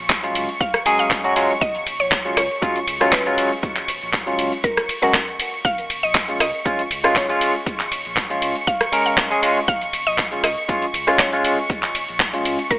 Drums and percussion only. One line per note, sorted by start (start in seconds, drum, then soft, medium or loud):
0.10 kick loud
0.10 clap loud
0.10 closed hi-hat medium
0.10 ride medium
0.10 shaker soft
0.24 closed hi-hat medium
0.24 shaker soft
0.35 open hi-hat loud
0.35 ride medium
0.35 shaker medium
0.49 closed hi-hat soft
0.49 shaker soft
0.61 kick loud
0.61 closed hi-hat medium
0.61 ride medium
0.61 shaker soft
0.74 cross-stick medium
0.74 closed hi-hat medium
0.74 shaker soft
0.86 open hi-hat loud
0.86 ride medium
0.86 shaker medium
0.99 closed hi-hat soft
0.99 shaker soft
1.11 kick loud
1.11 clap loud
1.11 closed hi-hat medium
1.11 ride medium
1.11 shaker soft
1.24 closed hi-hat medium
1.24 shaker soft
1.36 open hi-hat loud
1.36 ride medium
1.36 shaker medium
1.50 shaker soft
1.61 kick loud
1.61 closed hi-hat medium
1.61 ride medium
1.61 shaker soft
1.75 closed hi-hat medium
1.75 shaker soft
1.87 open hi-hat loud
1.87 ride medium
1.87 shaker medium
2.00 shaker soft
2.11 kick loud
2.11 clap loud
2.11 closed hi-hat medium
2.11 ride medium
2.11 shaker soft
2.25 closed hi-hat medium
2.25 shaker soft
2.37 cross-stick medium
2.37 open hi-hat loud
2.37 ride medium
2.37 shaker medium
2.51 shaker soft
2.62 kick loud
2.62 closed hi-hat medium
2.62 ride medium
2.62 shaker soft
2.76 closed hi-hat medium
2.88 open hi-hat loud
2.88 ride medium
2.88 shaker medium
3.01 cross-stick medium
3.01 closed hi-hat soft
3.01 shaker soft
3.12 kick loud
3.12 clap loud
3.12 closed hi-hat medium
3.12 ride medium
3.12 shaker soft
3.26 closed hi-hat medium
3.26 shaker soft
3.38 open hi-hat loud
3.38 ride medium
3.38 shaker medium
3.52 shaker soft
3.63 kick loud
3.63 closed hi-hat medium
3.63 ride medium
3.63 shaker soft
3.76 clap soft
3.76 closed hi-hat soft
3.76 shaker soft
3.88 open hi-hat loud
3.88 ride medium
3.88 shaker medium
4.02 closed hi-hat soft
4.02 shaker soft
4.13 kick loud
4.13 clap loud
4.13 closed hi-hat medium
4.13 ride medium
4.13 shaker soft
4.27 closed hi-hat medium
4.27 shaker soft
4.39 open hi-hat loud
4.39 ride medium
4.39 shaker medium
4.52 closed hi-hat soft
4.52 shaker soft
4.64 kick loud
4.64 closed hi-hat medium
4.64 ride medium
4.64 shaker soft
4.77 cross-stick medium
4.77 closed hi-hat medium
4.77 shaker soft
4.89 open hi-hat loud
4.89 ride medium
4.89 shaker medium
5.03 closed hi-hat soft
5.03 shaker soft
5.14 kick loud
5.14 clap loud
5.14 closed hi-hat medium
5.14 ride medium
5.14 shaker soft
5.28 closed hi-hat soft
5.28 shaker soft
5.40 open hi-hat loud
5.40 ride medium
5.40 shaker medium
5.53 shaker soft
5.65 kick loud
5.65 closed hi-hat medium
5.65 ride medium
5.65 shaker soft
5.78 closed hi-hat medium
5.78 shaker soft
5.90 open hi-hat loud
5.90 ride medium
5.90 shaker medium
6.04 shaker soft
6.15 kick loud
6.15 clap loud
6.15 closed hi-hat medium
6.15 ride medium
6.15 shaker soft
6.29 closed hi-hat medium
6.29 shaker soft
6.40 cross-stick medium
6.40 open hi-hat loud
6.40 ride medium
6.40 shaker medium
6.54 shaker soft
6.66 kick loud
6.66 closed hi-hat medium
6.66 ride medium
6.66 shaker soft
6.79 closed hi-hat medium
6.91 open hi-hat loud
6.91 ride medium
6.91 shaker medium
7.04 cross-stick medium
7.04 closed hi-hat soft
7.04 shaker soft
7.16 kick loud
7.16 clap loud
7.16 closed hi-hat medium
7.16 ride medium
7.16 shaker soft
7.29 closed hi-hat medium
7.29 shaker soft
7.41 open hi-hat loud
7.41 ride medium
7.41 shaker medium
7.55 shaker soft
7.66 kick loud
7.66 closed hi-hat medium
7.66 ride medium
7.66 shaker soft
7.80 clap soft
7.80 closed hi-hat medium
7.80 shaker soft
7.92 open hi-hat loud
7.92 ride medium
7.92 shaker medium
8.05 closed hi-hat soft
8.05 shaker soft
8.16 kick loud
8.16 clap loud
8.16 closed hi-hat medium
8.16 ride medium
8.16 shaker soft
8.30 closed hi-hat medium
8.30 shaker soft
8.42 open hi-hat loud
8.42 ride medium
8.42 shaker medium
8.56 closed hi-hat soft
8.56 shaker soft
8.67 kick loud
8.67 closed hi-hat medium
8.67 ride medium
8.67 shaker soft
8.81 cross-stick medium
8.81 closed hi-hat medium
8.81 shaker soft
8.93 open hi-hat loud
8.93 ride medium
8.93 shaker medium
9.06 closed hi-hat soft
9.06 shaker soft
9.17 kick loud
9.17 clap loud
9.17 closed hi-hat medium
9.17 ride medium
9.17 shaker soft
9.31 closed hi-hat medium
9.31 shaker soft
9.43 open hi-hat loud
9.43 ride medium
9.43 shaker medium
9.57 shaker soft
9.68 kick loud
9.68 closed hi-hat medium
9.68 ride medium
9.68 shaker soft
9.81 closed hi-hat medium
9.81 shaker soft
9.93 open hi-hat loud
9.93 ride medium
9.93 shaker medium
10.07 shaker soft
10.18 kick loud
10.18 clap loud
10.18 closed hi-hat medium
10.18 ride medium
10.18 shaker soft
10.32 closed hi-hat medium
10.32 shaker soft
10.44 cross-stick medium
10.44 open hi-hat loud
10.44 ride medium
10.44 shaker medium
10.57 shaker soft
10.69 kick loud
10.69 closed hi-hat medium
10.69 ride medium
10.69 shaker soft
10.82 closed hi-hat medium
10.94 open hi-hat loud
10.94 ride medium
10.94 shaker medium
11.08 cross-stick medium
11.08 closed hi-hat soft
11.08 shaker soft
11.19 kick loud
11.19 clap loud
11.19 closed hi-hat medium
11.19 ride medium
11.19 shaker soft
11.33 closed hi-hat medium
11.33 shaker soft
11.45 open hi-hat loud
11.45 ride medium
11.45 shaker medium
11.58 shaker soft
11.70 kick loud
11.70 closed hi-hat medium
11.70 ride medium
11.70 shaker soft
11.83 clap soft
11.83 closed hi-hat medium
11.83 shaker soft
11.95 open hi-hat loud
11.95 ride medium
11.95 shaker medium
12.08 closed hi-hat soft
12.08 shaker soft
12.20 kick loud
12.20 clap loud
12.20 closed hi-hat medium
12.20 ride medium
12.20 shaker soft
12.34 closed hi-hat medium
12.34 shaker soft
12.45 open hi-hat loud
12.45 ride medium
12.45 shaker medium
12.59 closed hi-hat soft
12.59 shaker soft
12.71 kick loud
12.71 closed hi-hat medium
12.71 ride medium
12.71 shaker soft